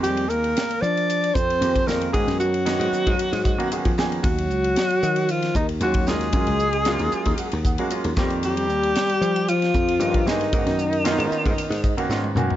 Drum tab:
RD |xx-xxx-xxx-xxx-x|xx-xxx-xxx-xxx-x|xx-xxx-xxx-xxx-x|xx-xxx-xxx-xxx-x|
HH |p-p-p-p-p-p-p-p-|p-p-p-p-p-p-p-p-|p-p-p-p-p-p-p-p-|p-p-p-p-p-p-p-p-|
SD |----o---------o-|-o--o----o----o-|----o----o----oo|----o---------o-|
T1 |----------------|----------------|----------------|----------------|
T2 |----------------|----------------|----------------|----------------|
FT |----------------|----------------|----------------|----------------|
BD |----------o--o--|o------o--o--o--|o---------o--o--|o------o--o---o-|

RD |xx-xxx-xxx-xxx-x|xx-xxx-xxx-x----|
HH |p-p-p-p-p-p-p-p-|p-p-p-p-p-p-p-p-|
SD |----o----o----oo|-o--o----o--o---|
T1 |----------------|-------------o--|
T2 |----------------|--------------o-|
FT |----------------|---------------o|
BD |----------o--o--|o------o--o-----|